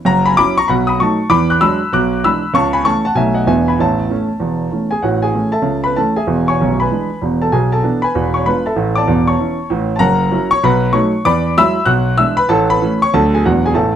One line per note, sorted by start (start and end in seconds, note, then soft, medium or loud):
0.05 0.32 F#1 medium
0.05 0.32 F#2 medium
0.05 0.24 F#5 medium
0.05 0.26 A#5 loud
0.26 0.37 G#5 medium
0.26 0.37 B5 medium
0.37 0.55 F#3 medium
0.37 0.55 C#4 medium
0.37 0.55 E4 medium
0.37 0.56 B5 medium
0.37 0.57 D6 loud
0.58 0.68 A#5 medium
0.58 0.69 C#6 loud
0.68 0.95 B1 medium
0.68 0.95 B2 medium
0.68 0.87 F#5 medium
0.68 0.87 B5 medium
0.87 0.99 B5 medium
0.87 0.99 D#6 medium
1.00 1.18 F#3 soft
1.00 1.18 A3 soft
1.00 1.18 D#4 medium
1.00 1.30 A5 medium
1.00 1.31 C#6 medium
1.30 1.57 E2 medium
1.30 1.56 E3 medium
1.30 1.49 B5 medium
1.30 1.50 D6 loud
1.50 1.62 D6 medium
1.50 1.62 F#6 medium
1.61 1.78 F#3 medium
1.61 1.78 G#3 medium
1.61 1.79 D4 medium
1.61 1.91 B5 medium
1.61 1.92 E6 loud
1.93 2.19 B1 medium
1.93 2.19 B2 medium
1.93 2.22 D6 medium
1.93 2.24 F#6 medium
2.24 2.42 E3 soft
2.24 2.42 G#3 soft
2.24 2.42 D4 medium
2.24 2.54 B5 medium
2.24 2.55 E6 medium
2.54 2.81 C#2 medium
2.54 2.81 C#3 medium
2.54 2.74 A5 medium
2.54 2.74 C#6 loud
2.73 2.85 G#5 medium
2.73 2.85 B5 medium
2.85 3.03 E3 soft
2.85 3.02 A3 soft
2.85 3.03 C#4 soft
2.85 3.03 A5 medium
2.85 3.05 C#6 loud
3.05 3.17 F#5 medium
3.05 3.17 A5 medium
3.15 3.43 B1 medium
3.15 3.42 B2 medium
3.15 3.33 F#3 soft
3.15 3.34 A3 soft
3.15 3.34 D#4 soft
3.15 3.36 E5 medium
3.15 3.36 G#5 medium
3.34 3.46 D#5 medium
3.34 3.47 F#5 medium
3.46 3.74 E1 medium
3.46 3.74 E2 medium
3.46 3.64 E3 soft
3.46 3.65 B3 soft
3.46 3.65 D4 soft
3.46 3.66 E5 medium
3.46 3.67 G#5 medium
3.68 3.79 G#5 medium
3.68 3.80 B5 medium
3.79 4.06 A1 medium
3.79 4.06 A2 medium
3.79 4.89 E5 medium
3.79 4.93 A5 medium
4.09 4.27 E3 soft
4.09 4.28 A3 soft
4.09 4.28 C#4 medium
4.40 4.68 E1 medium
4.40 4.67 E2 medium
4.71 4.90 E3 soft
4.71 4.89 A3 soft
4.71 4.90 C#4 soft
4.91 5.03 G#4 medium
4.91 5.03 G#5 medium
5.03 5.30 A1 medium
5.03 5.30 A2 medium
5.03 5.22 F#4 medium
5.03 5.23 F#5 medium
5.22 5.53 G#4 medium
5.22 5.54 G#5 medium
5.34 5.52 E3 soft
5.34 5.52 A3 soft
5.34 5.52 C#4 soft
5.52 5.83 A4 medium
5.52 5.83 E5 medium
5.52 5.84 A5 medium
5.62 5.91 C#2 soft
5.62 5.90 C#3 medium
5.84 5.96 B4 medium
5.84 5.96 B5 medium
5.96 6.14 E3 soft
5.96 6.14 A3 soft
5.96 6.15 C#4 soft
5.96 6.16 A4 medium
5.96 6.16 A5 medium
6.16 6.46 G#4 medium
6.16 6.46 E5 medium
6.16 6.48 G#5 medium
6.27 6.53 E1 medium
6.27 6.53 E2 medium
6.48 6.77 C#5 medium
6.48 6.78 G#5 medium
6.48 6.79 C#6 medium
6.61 6.86 B0 medium
6.61 6.85 B1 medium
6.80 7.20 B4 soft
6.80 7.20 G#5 medium
6.80 7.22 B5 medium
6.91 7.08 E3 soft
6.91 7.08 G#3 soft
6.91 7.08 D4 soft
7.22 7.47 E1 medium
7.22 7.47 E2 medium
7.42 7.53 A4 medium
7.42 7.53 A5 medium
7.52 7.79 B1 medium
7.52 7.79 B2 medium
7.52 7.71 G#4 medium
7.52 7.72 G#5 medium
7.72 8.02 A4 medium
7.72 8.03 A5 medium
7.83 8.01 E3 soft
7.83 8.00 B3 soft
7.83 8.01 D4 medium
8.02 8.33 B4 medium
8.02 8.33 G#5 medium
8.02 8.34 B5 medium
8.15 8.41 E1 medium
8.15 8.42 E2 medium
8.34 8.46 C#5 medium
8.34 8.46 C#6 medium
8.46 8.64 G#3 soft
8.46 8.64 D4 soft
8.46 8.64 F4 soft
8.46 8.65 B4 medium
8.46 8.66 B5 medium
8.66 8.95 A4 medium
8.66 8.95 E5 medium
8.66 8.96 A5 medium
8.76 9.01 A1 medium
8.76 9.02 A2 medium
8.95 9.26 D5 medium
8.95 9.26 A5 medium
8.95 9.27 D6 medium
9.08 9.33 E1 medium
9.08 9.33 E2 medium
9.27 9.68 C#5 medium
9.27 9.68 A5 soft
9.27 9.70 C#6 medium
9.40 9.57 E3 soft
9.40 9.57 C#4 soft
9.40 9.57 E4 soft
9.70 9.96 A1 medium
9.70 9.95 A2 medium
9.96 10.27 F#1 medium
9.96 10.27 F#2 medium
9.96 10.01 A5 medium
9.96 10.51 A#5 loud
10.00 10.48 A#4 medium
10.00 10.48 F#5 medium
10.31 10.49 F#3 soft
10.31 10.49 C#4 medium
10.31 10.49 E4 medium
10.51 10.63 C#5 medium
10.51 10.63 C#6 loud
10.63 10.90 B1 medium
10.63 10.90 B2 medium
10.63 10.93 B4 medium
10.63 10.93 F#5 medium
10.63 10.95 B5 medium
10.93 11.11 F#3 medium
10.93 11.11 A3 medium
10.93 11.11 D#4 medium
10.93 11.23 C#5 medium
10.93 11.25 C#6 medium
11.25 11.52 E2 medium
11.25 11.52 E3 medium
11.25 11.55 D5 medium
11.25 11.55 B5 medium
11.25 11.56 D6 loud
11.57 11.75 F#3 medium
11.57 11.74 G#3 medium
11.57 11.75 E4 medium
11.57 11.86 E5 medium
11.57 11.86 B5 medium
11.57 11.88 E6 loud
11.86 12.13 B1 medium
11.86 12.13 B2 medium
11.86 12.16 F#5 medium
11.86 12.18 F#6 loud
12.18 12.35 E3 soft
12.18 12.36 G#3 soft
12.18 12.36 D4 medium
12.18 12.37 E5 medium
12.18 12.38 E6 loud
12.37 12.49 B4 medium
12.37 12.49 B5 loud
12.49 12.76 A1 medium
12.49 12.76 A2 medium
12.49 12.68 A4 medium
12.49 12.69 A5 medium
12.70 12.99 B4 medium
12.70 13.01 B5 loud
12.82 12.99 E3 medium
12.82 12.99 A3 soft
12.82 12.99 C#4 medium
13.02 13.13 C#5 medium
13.02 13.13 C#6 loud
13.14 13.39 D2 medium
13.14 13.39 D3 medium
13.14 13.31 F#3 soft
13.14 13.31 A3 soft
13.14 13.31 D4 soft
13.14 13.32 A4 medium
13.14 13.32 A5 medium
13.34 13.44 G#4 medium
13.34 13.44 G#5 medium
13.45 13.71 E1 medium
13.45 13.71 E2 medium
13.45 13.62 F#3 soft
13.45 13.62 G#3 soft
13.45 13.63 D4 soft
13.45 13.63 F#4 medium
13.45 13.64 F#5 medium
13.66 13.76 G#4 medium
13.66 13.76 G#5 medium
13.74 13.96 A1 medium
13.74 13.96 A2 medium
13.74 13.96 A4 medium
13.74 13.96 E5 medium
13.74 13.96 A5 medium